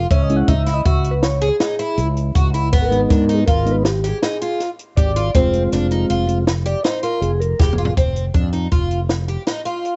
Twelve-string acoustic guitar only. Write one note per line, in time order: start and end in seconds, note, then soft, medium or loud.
0.11 0.38 C#4 medium
0.48 0.62 D#4 medium
0.67 0.80 E4 medium
0.86 1.13 F#4 medium
1.42 1.55 G#4 medium
1.60 1.74 D#4 medium
1.79 2.06 E4 medium
2.35 2.49 F#4 medium
2.54 2.68 E4 medium
2.73 3.00 B3 medium
3.10 3.24 D4 medium
3.29 3.43 D#4 medium
3.48 3.75 F4 medium
4.04 4.17 G4 medium
4.23 4.36 D#4 medium
4.42 4.69 F4 medium
4.98 5.11 G4 medium
5.16 5.30 F4 medium
5.35 5.62 C4 medium
5.73 5.86 D4 medium
5.92 6.05 D#4 medium
6.10 6.37 F4 medium
6.66 6.79 G4 medium
6.84 6.98 D#4 medium
7.03 7.30 F4 medium
7.59 7.73 G4 medium
7.78 7.92 F4 medium
7.97 8.24 C4 medium
8.34 8.48 D4 medium
8.53 8.67 D#4 medium
8.72 8.99 F4 medium
9.28 9.42 G4 medium
9.47 9.61 D#4 medium
9.65 9.93 F4 medium